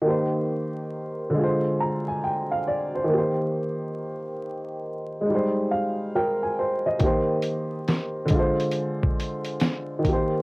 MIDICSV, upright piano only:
0, 0, Header, 1, 2, 480
1, 0, Start_track
1, 0, Key_signature, -3, "major"
1, 0, Tempo, 869565
1, 27, Time_signature, 4, 2, 24, 8
1, 5752, End_track
2, 0, Start_track
2, 0, Title_t, "Upright piano"
2, 0, Program_c, 0, 0
2, 14, Note_on_c, 0, 51, 67
2, 27, Note_on_c, 0, 58, 58
2, 40, Note_on_c, 0, 67, 57
2, 51, Note_on_c, 0, 72, 68
2, 130, Control_c, 0, 64, 127
2, 716, Note_on_c, 0, 50, 63
2, 740, Note_off_c, 0, 51, 0
2, 740, Note_on_c, 0, 56, 63
2, 747, Note_off_c, 0, 58, 0
2, 753, Note_off_c, 0, 67, 0
2, 753, Control_c, 0, 64, 0
2, 759, Note_off_c, 0, 72, 0
2, 766, Note_on_c, 0, 65, 55
2, 792, Note_on_c, 0, 72, 70
2, 865, Control_c, 0, 64, 127
2, 995, Note_on_c, 0, 82, 52
2, 1005, Note_off_c, 0, 72, 0
2, 1136, Note_off_c, 0, 82, 0
2, 1147, Note_on_c, 0, 80, 66
2, 1226, Note_off_c, 0, 80, 0
2, 1234, Note_on_c, 0, 79, 64
2, 1376, Note_off_c, 0, 79, 0
2, 1387, Note_on_c, 0, 77, 60
2, 1466, Note_off_c, 0, 77, 0
2, 1475, Note_on_c, 0, 74, 60
2, 1616, Note_off_c, 0, 74, 0
2, 1628, Note_on_c, 0, 72, 54
2, 1672, Note_off_c, 0, 50, 0
2, 1677, Note_on_c, 0, 51, 65
2, 1684, Note_off_c, 0, 56, 0
2, 1697, Note_off_c, 0, 65, 0
2, 1702, Note_on_c, 0, 58, 64
2, 1714, Control_c, 0, 64, 0
2, 1728, Note_on_c, 0, 67, 60
2, 1745, Note_off_c, 0, 72, 0
2, 1753, Note_on_c, 0, 72, 71
2, 1809, Control_c, 0, 64, 127
2, 2870, Note_off_c, 0, 51, 0
2, 2876, Note_on_c, 0, 56, 62
2, 2882, Note_off_c, 0, 58, 0
2, 2896, Note_off_c, 0, 67, 0
2, 2902, Note_on_c, 0, 63, 55
2, 2908, Note_off_c, 0, 72, 0
2, 2915, Control_c, 0, 64, 0
2, 2927, Note_on_c, 0, 55, 55
2, 2952, Note_on_c, 0, 72, 65
2, 2998, Control_c, 0, 64, 127
2, 3153, Note_on_c, 0, 77, 64
2, 3165, Note_off_c, 0, 72, 0
2, 3373, Note_off_c, 0, 77, 0
2, 3397, Note_on_c, 0, 70, 60
2, 3398, Note_on_c, 0, 79, 64
2, 3534, Note_off_c, 0, 79, 0
2, 3548, Note_on_c, 0, 80, 60
2, 3620, Note_off_c, 0, 70, 0
2, 3637, Note_on_c, 0, 72, 66
2, 3777, Note_off_c, 0, 72, 0
2, 3786, Note_on_c, 0, 75, 58
2, 3832, Note_off_c, 0, 56, 0
2, 3845, Note_off_c, 0, 63, 0
2, 3849, Note_off_c, 0, 80, 0
2, 3858, Note_off_c, 0, 55, 0
2, 3858, Note_on_c, 0, 51, 66
2, 3870, Note_on_c, 0, 58, 58
2, 3874, Control_c, 0, 64, 0
2, 3882, Note_on_c, 0, 67, 63
2, 3895, Note_on_c, 0, 72, 71
2, 3957, Control_c, 0, 64, 127
2, 4011, Note_off_c, 0, 75, 0
2, 4557, Note_on_c, 0, 50, 70
2, 4582, Note_off_c, 0, 51, 0
2, 4583, Note_on_c, 0, 56, 59
2, 4589, Note_off_c, 0, 58, 0
2, 4594, Note_off_c, 0, 67, 0
2, 4595, Control_c, 0, 64, 0
2, 4601, Note_off_c, 0, 72, 0
2, 4607, Note_on_c, 0, 65, 60
2, 4632, Note_on_c, 0, 72, 77
2, 4704, Control_c, 0, 64, 127
2, 5512, Note_off_c, 0, 50, 0
2, 5515, Note_on_c, 0, 51, 65
2, 5526, Note_off_c, 0, 56, 0
2, 5538, Note_off_c, 0, 65, 0
2, 5540, Note_on_c, 0, 58, 58
2, 5551, Note_off_c, 0, 72, 0
2, 5554, Control_c, 0, 64, 0
2, 5566, Note_on_c, 0, 67, 59
2, 5592, Note_on_c, 0, 72, 73
2, 5664, Control_c, 0, 64, 127
2, 5752, Note_off_c, 0, 51, 0
2, 5752, Note_off_c, 0, 58, 0
2, 5752, Note_off_c, 0, 67, 0
2, 5752, Note_off_c, 0, 72, 0
2, 5752, End_track
0, 0, End_of_file